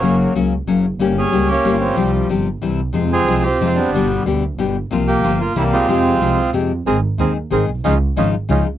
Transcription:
<<
  \new Staff \with { instrumentName = "Bandoneon" } { \time 3/4 \key f \minor \tempo 4 = 184 r2. | r2. | r2. | r2. |
r2. | r2. | r2. | \key aes \major <c' aes' bes'>8 r8 <c' aes' bes'>8 r8 <c' aes' bes'>8 r8 |
<des' ees' f'>8 r8 <des' ees' f'>8 r8 <des' ees' f'>8 r8 | }
  \new Staff \with { instrumentName = "Bandoneon" } { \time 3/4 \key f \minor des'8 r2 r8 | r8 aes'4 g'8. f'16 c'8~ | c'8 r2 r8 | r8 aes'4 g'8. f'16 d'8~ |
d'8 r2 r8 | r8 g'4 f'8 e'8 f'8~ | f'2 r4 | \key aes \major r2. |
r2. | }
  \new Staff \with { instrumentName = "Bandoneon" } { \time 3/4 \key f \minor <ges bes>4 r2 | r8 des'4 <bes des'>4 <f g>8~ | <f g>4 r2 | r8 <c' f'>4 c'4 <g b>8~ |
<g b>4 r2 | r8 bes4. <g bes>8 <aes c'>8~ | <aes c'>2 r4 | \key aes \major r2. |
r2. | }
  \new Staff \with { instrumentName = "Nylon-string guitar" } { \clef bass \time 3/4 \key f \minor <des ges bes des' ges'>4 <des ges bes des' ges'>8 r8 <des ges bes des' ges'>8 r8 | <g bes des' g'>4 <g bes des' g'>8 r8 <g bes des' g'>8 r8 | <c f g c' g'>4 <c f g c' g'>8 r8 <c e g c' e'>8 r8 | <c f aes c' f'>4 <c f aes c' f'>8 r8 <c f aes c' f'>8 r8 |
<b, d g b g'>4 <b, d g b g'>8 r8 <b, d g b g'>8 r8 | <c f bes c' f'>4 <c f bes c' f'>8 r8 <c e bes c' e'>8 r8 | <c f aes c' g'>4 <c f aes c' g'>8 r8 <c f aes c' g'>8 r8 | \key aes \major <ees aes c' aes'>8 r8 <ees aes c' aes'>8 r8 <ees aes c' aes'>8 r8 |
<des f aes ees' f'>8 r8 <des f aes ees' f'>8 r8 <des f aes ees' f'>8 r8 | }
  \new Staff \with { instrumentName = "Double bass" } { \clef bass \time 3/4 \key f \minor ges,,4 des,4 ges,,4 | g,,4 des,4 g,,4 | c,4 g,,4 c,4 | f,4 c,4 f,4 |
g,,4 d,4 g,,4 | c,4 g,,4 c,4 | f,4 c,4 f,4 | \key aes \major aes,,8 r8 ees,8 r8 aes,,8 ces,8 |
des,8 r8 aes,,8 r8 des,8 r8 | }
>>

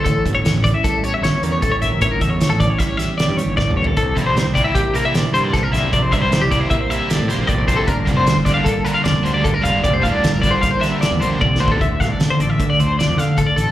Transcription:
<<
  \new Staff \with { instrumentName = "Clean electric guitar" } { \time 5/4 \key d \minor \tempo 4 = 153 a'8 r16 cis''8 r16 d''16 e''16 a'8 cis''16 e''16 cis''8 bes'16 cis''16 a'16 cis''16 e''8 | cis''16 bes'16 e''16 cis''8 a'16 d''16 cis''16 e''16 cis''16 e''8 d''8 cis''8 d''8 cis''16 a'16 | a'8 r16 c''8 r16 d''16 e''16 g'8 bes'16 e''16 d''8 c''16 d''16 a'16 bes'16 e''8 | d''16 c''16 e''16 c''8 g'16 d''16 c''16 e''16 c''16 e''8 d''8 c''8 d''8 c''16 a'16 |
bes'8 r16 c''8 r16 d''16 f''16 a'8 bes'16 f''16 d''8 c''16 d''16 a'16 bes'16 f''8 | d''16 c''16 f''16 d''8 bes'16 d''16 c''16 f''16 c''16 e''8 d''8 c''8 d''8 c''16 a'16 | e''8 f''16 d''8 c''16 d''16 e''8 d''16 c''8 d''8 f''8 a'16 d''16 a'8 | }
  \new Staff \with { instrumentName = "Clean electric guitar" } { \time 5/4 \key d \minor << { cis'8 a'8 cis'4 g8 g'8 cis'8 g8 cis'8 bes'8 | cis'8 a'8 cis'4 g8 g'8 cis'8 g4. | c'8 d'8 c'4 bes8 d'16 e'16 c'8 bes8 c'8 d'8 | c'8 d'8 c'4 bes8 e'8 a16 c'16 bes8 a16 c'16 d'8 |
d'8 e'8 d'4 bes8 f'8 d'8 g16 bes16 d'8 f'8 | d'8 e'8 d'4 bes8 f'8 d'8 bes4. | r8 a8 d'4 a8 d'16 f'16 d'8 a4. | } \\ { a,4 e4. e,4. a,4 | a,4 e4. e,4. a,8 bes,8 | c4 e4. c4. c4 | c4 e4. c4. c4 |
g,4 d4. d4. g,4 | g,4 d4. d4. f,8 e,8 | d,4. d2. d,8 | } >> }
  \new Staff \with { instrumentName = "Overdriven electric guitar" } { \clef bass \time 5/4 \key d \minor r1 r4 | r1 r4 | r8 <c g bes e'>8 r8 <c g bes e'>8 r8 <c g bes e'>8 r8 <c g bes e'>8 r8 <c g bes e'>8 | r8 <c g bes e'>8 r8 <c g bes e'>8 r8 <c g bes e'>8 r8 <c g bes e'>8 r8 <c g bes e'>8 |
r8 <d g bes d'>8 r8 <d g bes d'>8 r8 <d g bes d'>8 r8 <d g bes d'>8 r8 <d g bes d'>8 | r8 <d g bes d'>8 r8 <d g bes d'>8 r8 <d g bes d'>8 r8 <d g bes d'>8 r8 <d g bes d'>8 | r1 r4 | }
  \new Staff \with { instrumentName = "Fingered electric bass" } { \clef bass \time 5/4 \key d \minor a,,8 g,,8 e,16 a,,8 r4 r16 g,,16 r16 e,8 r8 g,,16 a,,16 | g,,8 e,8 a,,16 a,,8 r4. g,16 r16 g,,8 g,,8 r16 | c,8 bes,,8 g,16 c,8 r4 r16 bes,,16 r16 g,8 r8 bes,,16 c,16 | bes,,8 g,8 c,16 c,8 r4. a,16 r16 bes,,8 bes,,8 r16 |
g,,8 f,,8 d,16 g,,8 r4 r16 f,,16 r16 d,8 r8 f,,16 g,,16 | f,,8 d,8 g,,16 g,,8 r4. e,16 bes,,8 c,8 d,8 | d,8 c,16 r16 d8 a,,8 d8 d,8 r16 f,16 d8 r8 a,,16 f,16 | }
  \new DrumStaff \with { instrumentName = "Drums" } \drummode { \time 5/4 <hh bd>8 <hh bd>8 <hh sn>8 <hh bd>8 <hh bd>8 hh8 <hh sn>8 hh8 <hh bd>8 hh8 | <hh bd>8 <hh bd>8 <hh sn>8 <hh bd>8 <hh bd sn>8 <hh sn>8 <hh sn>8 hh8 \tuplet 3/2 { <bd sn>8 toml8 tomfh8 } | <hh bd>8 <hh bd>8 <hh sn>8 <hh bd>8 <hh bd>8 hh8 <hh sn>8 hh8 <hh bd sn>8 <hh sn>8 | <hh bd>8 <hh bd>8 <hh sn>8 <hh bd>8 <hh bd>8 hh8 <hh sn>8 <hh sn>8 <hh bd>8 <hh bd>8 |
<hh bd>8 <hh bd>8 <hh sn>8 <hh bd sn>8 <hh bd>8 hh8 <hh sn>8 hh8 <hh bd>8 hh8 | <hh bd>8 <hh bd>8 <hh sn>8 <hh bd>8 <hh bd sn>8 <hh sn>8 <hh sn>8 hh8 \tuplet 3/2 { <bd tommh>8 sn8 bd8 } | <hh bd>8 <hh bd sn>8 <hh sn>8 hh8 <hh bd>8 hh8 <hh sn>8 <hh sn>8 <hh bd>8 hh8 | }
>>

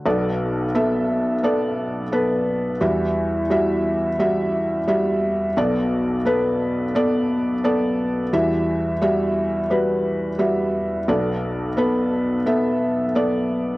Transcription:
<<
  \new Staff \with { instrumentName = "Felt piano" } { \time 4/4 \key b \minor \tempo 4 = 87 <b a' d''>4 <b a' e''>4 <b a' d''>4 <b a' b'>4 | <g fis' e''>4 <g fis' e''>4 <g fis' e''>4 <g fis' e''>4 | <b a' d''>4 <b a' b'>4 <b a' d''>4 <b a' d''>4 | <g fis' e''>4 <g fis' e''>4 <g fis' b'>4 <g fis' e''>4 |
<b a' d''>4 <b a' b'>4 <b a' e''>4 <b a' d''>4 | }
  \new Staff \with { instrumentName = "Felt piano" } { \clef bass \time 4/4 \key b \minor <b,, b,>1 | <e, e>1 | <b,, b,>1 | <e, e>1 |
<b,, b,>1 | }
>>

